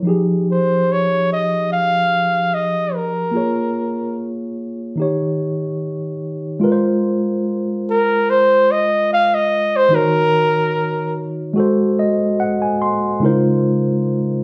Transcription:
0, 0, Header, 1, 3, 480
1, 0, Start_track
1, 0, Key_signature, -4, "major"
1, 0, Tempo, 821918
1, 39, Time_signature, 4, 2, 24, 8
1, 8431, End_track
2, 0, Start_track
2, 0, Title_t, "Flugelhorn"
2, 0, Program_c, 0, 56
2, 298, Note_on_c, 0, 72, 81
2, 536, Note_on_c, 0, 73, 94
2, 545, Note_off_c, 0, 72, 0
2, 767, Note_off_c, 0, 73, 0
2, 773, Note_on_c, 0, 75, 90
2, 990, Note_off_c, 0, 75, 0
2, 1008, Note_on_c, 0, 77, 105
2, 1483, Note_on_c, 0, 75, 90
2, 1492, Note_off_c, 0, 77, 0
2, 1721, Note_on_c, 0, 70, 76
2, 1730, Note_off_c, 0, 75, 0
2, 2440, Note_off_c, 0, 70, 0
2, 4615, Note_on_c, 0, 70, 90
2, 4847, Note_on_c, 0, 72, 96
2, 4855, Note_off_c, 0, 70, 0
2, 5089, Note_on_c, 0, 75, 90
2, 5098, Note_off_c, 0, 72, 0
2, 5325, Note_off_c, 0, 75, 0
2, 5333, Note_on_c, 0, 77, 102
2, 5456, Note_on_c, 0, 75, 100
2, 5465, Note_off_c, 0, 77, 0
2, 5700, Note_on_c, 0, 72, 95
2, 5709, Note_off_c, 0, 75, 0
2, 5809, Note_on_c, 0, 70, 98
2, 5818, Note_off_c, 0, 72, 0
2, 6524, Note_off_c, 0, 70, 0
2, 8431, End_track
3, 0, Start_track
3, 0, Title_t, "Tine electric piano"
3, 0, Program_c, 1, 4
3, 0, Control_c, 1, 64, 127
3, 16, Note_on_c, 1, 53, 61
3, 28, Note_on_c, 1, 63, 56
3, 42, Note_on_c, 1, 67, 66
3, 47, Control_c, 1, 64, 0
3, 52, Note_on_c, 1, 68, 73
3, 136, Control_c, 1, 64, 127
3, 1925, Note_off_c, 1, 53, 0
3, 1931, Note_off_c, 1, 63, 0
3, 1935, Note_on_c, 1, 58, 55
3, 1938, Note_off_c, 1, 67, 0
3, 1943, Note_off_c, 1, 68, 0
3, 1949, Note_on_c, 1, 65, 47
3, 1961, Note_on_c, 1, 68, 54
3, 1967, Control_c, 1, 64, 0
3, 1967, Note_on_c, 1, 73, 57
3, 2070, Control_c, 1, 64, 127
3, 2888, Note_off_c, 1, 58, 0
3, 2895, Note_off_c, 1, 65, 0
3, 2895, Note_on_c, 1, 51, 60
3, 2901, Note_off_c, 1, 68, 0
3, 2904, Note_off_c, 1, 73, 0
3, 2906, Note_on_c, 1, 63, 61
3, 2918, Note_on_c, 1, 67, 60
3, 2927, Control_c, 1, 64, 0
3, 2930, Note_on_c, 1, 73, 72
3, 3029, Control_c, 1, 64, 127
3, 3848, Note_off_c, 1, 51, 0
3, 3852, Note_on_c, 1, 56, 69
3, 3854, Note_off_c, 1, 63, 0
3, 3860, Note_off_c, 1, 67, 0
3, 3861, Note_on_c, 1, 65, 70
3, 3866, Note_off_c, 1, 73, 0
3, 3876, Note_on_c, 1, 70, 61
3, 3881, Note_on_c, 1, 71, 58
3, 3887, Control_c, 1, 64, 0
3, 3921, Note_off_c, 1, 71, 0
3, 3924, Note_on_c, 1, 72, 82
3, 4006, Control_c, 1, 64, 127
3, 5762, Note_off_c, 1, 56, 0
3, 5767, Note_off_c, 1, 65, 0
3, 5774, Note_off_c, 1, 70, 0
3, 5776, Note_on_c, 1, 51, 58
3, 5787, Note_on_c, 1, 63, 62
3, 5797, Note_on_c, 1, 66, 53
3, 5798, Note_off_c, 1, 72, 0
3, 5806, Control_c, 1, 64, 0
3, 5809, Note_on_c, 1, 73, 63
3, 5909, Control_c, 1, 64, 127
3, 6728, Note_off_c, 1, 51, 0
3, 6734, Note_off_c, 1, 63, 0
3, 6737, Note_on_c, 1, 56, 74
3, 6739, Note_off_c, 1, 66, 0
3, 6745, Note_off_c, 1, 73, 0
3, 6750, Note_on_c, 1, 66, 68
3, 6759, Note_on_c, 1, 69, 70
3, 6768, Control_c, 1, 64, 0
3, 6773, Note_on_c, 1, 72, 84
3, 6879, Control_c, 1, 64, 127
3, 7004, Note_on_c, 1, 75, 80
3, 7225, Note_off_c, 1, 75, 0
3, 7241, Note_on_c, 1, 78, 81
3, 7361, Note_off_c, 1, 78, 0
3, 7369, Note_on_c, 1, 80, 63
3, 7472, Note_off_c, 1, 80, 0
3, 7485, Note_on_c, 1, 84, 77
3, 7688, Note_off_c, 1, 56, 0
3, 7695, Note_off_c, 1, 66, 0
3, 7700, Note_off_c, 1, 69, 0
3, 7705, Note_off_c, 1, 84, 0
3, 7707, Note_off_c, 1, 72, 0
3, 7709, Note_on_c, 1, 49, 79
3, 7715, Note_on_c, 1, 56, 59
3, 7724, Note_on_c, 1, 63, 67
3, 7727, Note_on_c, 1, 64, 56
3, 7728, Control_c, 1, 64, 0
3, 7736, Note_on_c, 1, 70, 67
3, 7743, Note_on_c, 1, 72, 84
3, 7763, Note_on_c, 1, 65, 69
3, 7764, Note_off_c, 1, 64, 0
3, 7821, Control_c, 1, 64, 127
3, 8431, Note_off_c, 1, 49, 0
3, 8431, Note_off_c, 1, 56, 0
3, 8431, Note_off_c, 1, 63, 0
3, 8431, Note_off_c, 1, 65, 0
3, 8431, Note_off_c, 1, 70, 0
3, 8431, Note_off_c, 1, 72, 0
3, 8431, End_track
0, 0, End_of_file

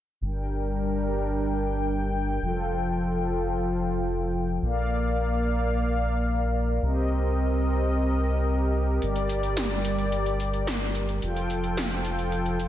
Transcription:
0, 0, Header, 1, 4, 480
1, 0, Start_track
1, 0, Key_signature, -2, "minor"
1, 0, Tempo, 550459
1, 185, Time_signature, 4, 2, 24, 8
1, 11059, End_track
2, 0, Start_track
2, 0, Title_t, "Analog synth pad"
2, 0, Program_c, 0, 89
2, 183, Note_on_c, 0, 55, 79
2, 183, Note_on_c, 0, 62, 71
2, 183, Note_on_c, 0, 70, 71
2, 183, Note_on_c, 0, 79, 87
2, 2084, Note_off_c, 0, 62, 0
2, 2085, Note_off_c, 0, 55, 0
2, 2085, Note_off_c, 0, 70, 0
2, 2103, Note_on_c, 0, 65, 71
2, 2104, Note_on_c, 0, 53, 77
2, 2105, Note_on_c, 0, 69, 72
2, 3989, Note_off_c, 0, 79, 0
2, 4005, Note_off_c, 0, 53, 0
2, 4005, Note_off_c, 0, 65, 0
2, 4005, Note_off_c, 0, 69, 0
2, 4025, Note_on_c, 0, 58, 78
2, 4025, Note_on_c, 0, 74, 71
2, 4025, Note_on_c, 0, 77, 86
2, 4026, Note_on_c, 0, 70, 72
2, 5925, Note_off_c, 0, 58, 0
2, 5926, Note_off_c, 0, 74, 0
2, 5926, Note_off_c, 0, 77, 0
2, 5945, Note_on_c, 0, 75, 87
2, 5947, Note_on_c, 0, 60, 80
2, 5948, Note_on_c, 0, 67, 73
2, 7846, Note_off_c, 0, 60, 0
2, 7846, Note_off_c, 0, 75, 0
2, 7866, Note_on_c, 0, 55, 78
2, 7867, Note_on_c, 0, 74, 89
2, 9750, Note_off_c, 0, 70, 0
2, 9751, Note_off_c, 0, 67, 0
2, 9766, Note_off_c, 0, 55, 0
2, 9766, Note_off_c, 0, 74, 0
2, 9784, Note_on_c, 0, 53, 81
2, 9784, Note_on_c, 0, 69, 72
2, 9785, Note_on_c, 0, 65, 72
2, 9786, Note_on_c, 0, 79, 88
2, 11059, Note_off_c, 0, 53, 0
2, 11059, Note_off_c, 0, 65, 0
2, 11059, Note_off_c, 0, 69, 0
2, 11059, Note_off_c, 0, 79, 0
2, 11059, End_track
3, 0, Start_track
3, 0, Title_t, "Analog synth bass"
3, 0, Program_c, 1, 38
3, 183, Note_on_c, 1, 31, 82
3, 2080, Note_off_c, 1, 31, 0
3, 2103, Note_on_c, 1, 29, 81
3, 4000, Note_off_c, 1, 29, 0
3, 4026, Note_on_c, 1, 34, 82
3, 5921, Note_off_c, 1, 34, 0
3, 5946, Note_on_c, 1, 36, 81
3, 7841, Note_off_c, 1, 36, 0
3, 7868, Note_on_c, 1, 31, 81
3, 9762, Note_off_c, 1, 31, 0
3, 9786, Note_on_c, 1, 29, 82
3, 11059, Note_off_c, 1, 29, 0
3, 11059, End_track
4, 0, Start_track
4, 0, Title_t, "Drums"
4, 7866, Note_on_c, 9, 42, 56
4, 7953, Note_off_c, 9, 42, 0
4, 7985, Note_on_c, 9, 42, 33
4, 8072, Note_off_c, 9, 42, 0
4, 8105, Note_on_c, 9, 42, 82
4, 8192, Note_off_c, 9, 42, 0
4, 8223, Note_on_c, 9, 42, 34
4, 8311, Note_off_c, 9, 42, 0
4, 8344, Note_on_c, 9, 38, 107
4, 8344, Note_on_c, 9, 42, 55
4, 8431, Note_off_c, 9, 38, 0
4, 8431, Note_off_c, 9, 42, 0
4, 8465, Note_on_c, 9, 42, 35
4, 8553, Note_off_c, 9, 42, 0
4, 8586, Note_on_c, 9, 42, 77
4, 8673, Note_off_c, 9, 42, 0
4, 8707, Note_on_c, 9, 42, 34
4, 8794, Note_off_c, 9, 42, 0
4, 8827, Note_on_c, 9, 42, 56
4, 8914, Note_off_c, 9, 42, 0
4, 8948, Note_on_c, 9, 42, 34
4, 9035, Note_off_c, 9, 42, 0
4, 9068, Note_on_c, 9, 42, 81
4, 9155, Note_off_c, 9, 42, 0
4, 9187, Note_on_c, 9, 42, 33
4, 9274, Note_off_c, 9, 42, 0
4, 9307, Note_on_c, 9, 38, 106
4, 9307, Note_on_c, 9, 42, 56
4, 9395, Note_off_c, 9, 38, 0
4, 9395, Note_off_c, 9, 42, 0
4, 9427, Note_on_c, 9, 42, 34
4, 9514, Note_off_c, 9, 42, 0
4, 9547, Note_on_c, 9, 42, 79
4, 9634, Note_off_c, 9, 42, 0
4, 9667, Note_on_c, 9, 42, 34
4, 9755, Note_off_c, 9, 42, 0
4, 9787, Note_on_c, 9, 42, 57
4, 9874, Note_off_c, 9, 42, 0
4, 9909, Note_on_c, 9, 42, 33
4, 9996, Note_off_c, 9, 42, 0
4, 10028, Note_on_c, 9, 42, 80
4, 10115, Note_off_c, 9, 42, 0
4, 10148, Note_on_c, 9, 42, 34
4, 10235, Note_off_c, 9, 42, 0
4, 10267, Note_on_c, 9, 38, 104
4, 10267, Note_on_c, 9, 42, 58
4, 10355, Note_off_c, 9, 38, 0
4, 10355, Note_off_c, 9, 42, 0
4, 10388, Note_on_c, 9, 42, 35
4, 10475, Note_off_c, 9, 42, 0
4, 10505, Note_on_c, 9, 42, 80
4, 10592, Note_off_c, 9, 42, 0
4, 10626, Note_on_c, 9, 42, 34
4, 10713, Note_off_c, 9, 42, 0
4, 10745, Note_on_c, 9, 42, 54
4, 10832, Note_off_c, 9, 42, 0
4, 10865, Note_on_c, 9, 42, 34
4, 10952, Note_off_c, 9, 42, 0
4, 10983, Note_on_c, 9, 42, 84
4, 11059, Note_off_c, 9, 42, 0
4, 11059, End_track
0, 0, End_of_file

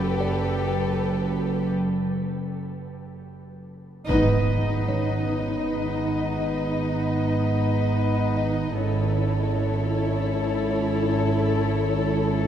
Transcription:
0, 0, Header, 1, 9, 480
1, 0, Start_track
1, 0, Tempo, 779221
1, 1079, Time_signature, 3, 2, 24, 8
1, 7683, End_track
2, 0, Start_track
2, 0, Title_t, "Music box"
2, 0, Program_c, 0, 10
2, 0, Note_on_c, 0, 78, 35
2, 126, Note_on_c, 0, 74, 37
2, 575, Note_off_c, 0, 78, 0
2, 1057, Note_off_c, 0, 74, 0
2, 3008, Note_on_c, 0, 73, 29
2, 3011, Note_on_c, 0, 61, 26
2, 4419, Note_off_c, 0, 73, 0
2, 4420, Note_off_c, 0, 61, 0
2, 5156, Note_on_c, 0, 75, 23
2, 6573, Note_off_c, 0, 75, 0
2, 6595, Note_on_c, 0, 73, 37
2, 6598, Note_on_c, 0, 61, 24
2, 7683, Note_off_c, 0, 61, 0
2, 7683, Note_off_c, 0, 73, 0
2, 7683, End_track
3, 0, Start_track
3, 0, Title_t, "Violin section"
3, 0, Program_c, 1, 48
3, 0, Note_on_c, 1, 71, 41
3, 1053, Note_off_c, 1, 71, 0
3, 2514, Note_on_c, 1, 75, 39
3, 5372, Note_off_c, 1, 75, 0
3, 5403, Note_on_c, 1, 73, 31
3, 7683, Note_off_c, 1, 73, 0
3, 7683, End_track
4, 0, Start_track
4, 0, Title_t, "Violin section"
4, 0, Program_c, 2, 48
4, 0, Note_on_c, 2, 67, 46
4, 0, Note_on_c, 2, 69, 44
4, 1052, Note_off_c, 2, 69, 0
4, 1053, Note_off_c, 2, 67, 0
4, 2516, Note_on_c, 2, 71, 44
4, 5373, Note_off_c, 2, 71, 0
4, 5396, Note_on_c, 2, 69, 39
4, 7683, Note_off_c, 2, 69, 0
4, 7683, End_track
5, 0, Start_track
5, 0, Title_t, "Viola section"
5, 0, Program_c, 3, 48
5, 2513, Note_on_c, 3, 63, 41
5, 5371, Note_off_c, 3, 63, 0
5, 5399, Note_on_c, 3, 64, 36
5, 7683, Note_off_c, 3, 64, 0
5, 7683, End_track
6, 0, Start_track
6, 0, Title_t, "French horn section"
6, 0, Program_c, 4, 60
6, 2514, Note_on_c, 4, 59, 52
6, 2514, Note_on_c, 4, 63, 50
6, 5371, Note_off_c, 4, 63, 0
6, 5372, Note_off_c, 4, 59, 0
6, 5390, Note_on_c, 4, 69, 41
6, 5391, Note_on_c, 4, 61, 45
6, 7683, Note_off_c, 4, 61, 0
6, 7683, Note_off_c, 4, 69, 0
6, 7683, End_track
7, 0, Start_track
7, 0, Title_t, "Cello section"
7, 0, Program_c, 5, 48
7, 0, Note_on_c, 5, 42, 50
7, 1057, Note_off_c, 5, 42, 0
7, 2524, Note_on_c, 5, 44, 50
7, 5377, Note_off_c, 5, 44, 0
7, 5400, Note_on_c, 5, 44, 39
7, 7683, Note_off_c, 5, 44, 0
7, 7683, End_track
8, 0, Start_track
8, 0, Title_t, "Double bass section"
8, 0, Program_c, 6, 48
8, 0, Note_on_c, 6, 30, 47
8, 1055, Note_off_c, 6, 30, 0
8, 2521, Note_on_c, 6, 32, 50
8, 5375, Note_off_c, 6, 32, 0
8, 5398, Note_on_c, 6, 32, 41
8, 7683, Note_off_c, 6, 32, 0
8, 7683, End_track
9, 0, Start_track
9, 0, Title_t, "Impact"
9, 0, Program_c, 7, 103
9, 2520, Note_on_c, 7, 60, 38
9, 3959, Note_off_c, 7, 60, 0
9, 7683, End_track
0, 0, End_of_file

